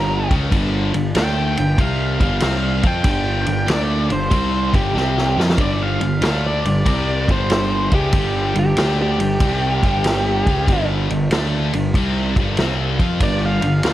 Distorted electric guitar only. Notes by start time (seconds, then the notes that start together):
Already playing: G2 D3 G3
0.30 C#3 G#3 C#4
0.50 G2 D3 G3
0.94 G2 D3
1.15 D3 A3 D4
1.57 G2 D3
1.78 C3 G3 C4
2.21 G2 D3 G3
2.42 C3 G3 C4
2.83 F3 C4 F4
3.03 G2 D3 G3
3.46 G2 D3
3.66 D3 A3 D4
4.09 G2 D3
4.30 C3 G3 C4
4.72 G2 D3 G3
4.94 C3 G3 C4
5.37 F3 C4 F4
5.58 G2 D3 G3
6.02 G2 D3
6.21 D3 A3 D4
6.66 G2 D3
6.85 C3 G3 C4
7.29 G2 D3 G3
7.92 C#3 G#3 C#4
8.14 G2 D3 G3
8.56 G2 D3
8.77 D3 A3 D4
9.19 G2 D3
9.40 C3 G3 C4
9.84 G2 D3 G3
10.48 C#3 G#3 C#4
10.69 G2 D3 G3
11.11 G2 D3
11.32 D3 A3 D4
11.74 G2 D3
11.96 C3 G3 C4
12.39 G2 D3 G3
12.59 C3 G3 C4
13.00 F3 C4 F4
13.21 G2 D3 G3
13.63 G2 D3
13.84 D3 A3 D4